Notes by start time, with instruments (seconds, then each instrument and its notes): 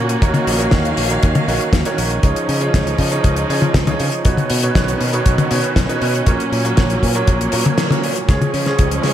Already playing: fingered electric bass A#2, grand piano A#2 C#4 F#4 A#4 C#5, string section A#3 C#4 F#4
0.09 closed hi-hat
0.22 fingered electric bass D#2, string section D#3 F5, grand piano D#3 D#4 F#4 A#4 C#5, kick, closed hi-hat
0.34 closed hi-hat, high tom
0.47 fingered electric bass A#1, open hi-hat
0.60 grand piano D#3 D#4 F#4 A#4 C#5, closed hi-hat
0.71 fingered electric bass D#2, kick, snare, closed hi-hat
0.85 closed hi-hat
0.97 fingered electric bass A#1, open hi-hat
1.10 grand piano D#3 D#4 F#4 A#4 C#5, closed hi-hat
1.23 fingered electric bass D#2, kick, closed hi-hat
1.35 closed hi-hat, high tom
1.48 fingered electric bass A#1, grand piano D#3 D#4 F#4 A#4 C#5, open hi-hat
1.61 closed hi-hat
1.73 fingered electric bass D#2, kick, snare, closed hi-hat
1.85 grand piano D#3 D#4 F#4 A#4 C#5, closed hi-hat
1.98 fingered electric bass A#1, open hi-hat
2.11 closed hi-hat
2.23 fingered electric bass C#2, grand piano C#3 D#4 F4 G#4 C#5, string section F3 D#4, kick, closed hi-hat
2.36 closed hi-hat
2.49 fingered electric bass C#3, open hi-hat
2.61 grand piano C#3 D#4 F4 G#4 C#5, closed hi-hat
2.74 fingered electric bass C#2, kick, snare, closed hi-hat
2.87 closed hi-hat
2.98 fingered electric bass C#3, kick, open hi-hat
3.12 grand piano C#3 D#4 F4 G#4 C#5, closed hi-hat
3.24 fingered electric bass C#2, kick, closed hi-hat
3.36 closed hi-hat
3.49 fingered electric bass C#3, grand piano C#3 D#4 F4 G#4 C#5, open hi-hat
3.62 closed hi-hat, high tom
3.74 fingered electric bass C#2, kick, snare, closed hi-hat
3.87 grand piano C#3 D#4 F4 G#4 C#5, closed hi-hat, high tom
4.00 fingered electric bass C#3, open hi-hat
4.12 closed hi-hat
4.25 fingered electric bass B1, grand piano B2 D#4 F#4 B4 C#5, string section D#3 B3 C#4, kick, closed hi-hat
4.37 closed hi-hat, high tom
4.50 fingered electric bass B2, open hi-hat
4.63 grand piano B2 D#4 F#4 B4 C#5, closed hi-hat
4.75 fingered electric bass B1, kick, snare, closed hi-hat
4.88 closed hi-hat
5.01 fingered electric bass B2, open hi-hat
5.13 grand piano B2 D#4 F#4 B4 C#5, closed hi-hat
5.26 fingered electric bass B1, kick, closed hi-hat
5.38 closed hi-hat, high tom
5.51 fingered electric bass B2, grand piano B2 D#4 F#4 B4 C#5, open hi-hat
5.64 closed hi-hat
5.76 fingered electric bass B1, kick, snare, closed hi-hat
5.89 grand piano B2 D#4 F#4 B4 C#5, closed hi-hat
6.02 fingered electric bass B2, open hi-hat
6.15 closed hi-hat
6.26 fingered electric bass A#1, grand piano A#2 C#4 F#4 A#4 C#5, string section F#3 A#3, kick, closed hi-hat
6.40 closed hi-hat
6.52 fingered electric bass A#2, open hi-hat
6.65 grand piano A#2 C#4 F#4 A#4 C#5, closed hi-hat
6.77 fingered electric bass A#1, kick, snare, closed hi-hat
6.90 closed hi-hat
7.03 fingered electric bass A#2, kick, open hi-hat
7.15 grand piano A#2 C#4 F#4 A#4 C#5, closed hi-hat
7.27 fingered electric bass A#1, kick, closed hi-hat
7.41 closed hi-hat
7.52 fingered electric bass A#2, grand piano A#2 C#4 F#4 A#4 C#5, open hi-hat
7.65 grand piano A#2 C#4 F#4 A#4 C#5, closed hi-hat, high tom
7.78 snare, closed hi-hat
7.91 grand piano A#2 C#4 F#4 A#4 C#5, closed hi-hat, high tom
8.04 open hi-hat
8.16 closed hi-hat
8.28 fingered electric bass C#2, grand piano C#3 C#4 F4 G#4 C#5, string section F3 G#3 C#4, kick, snare, closed hi-hat, riser
8.42 closed hi-hat, high tom
8.54 fingered electric bass C#3, open hi-hat
8.66 grand piano C#3 C#4 F4 G#4 C#5, snare, closed hi-hat
8.79 fingered electric bass C#2, kick, closed hi-hat
8.91 closed hi-hat
9.03 fingered electric bass C#3, snare, open hi-hat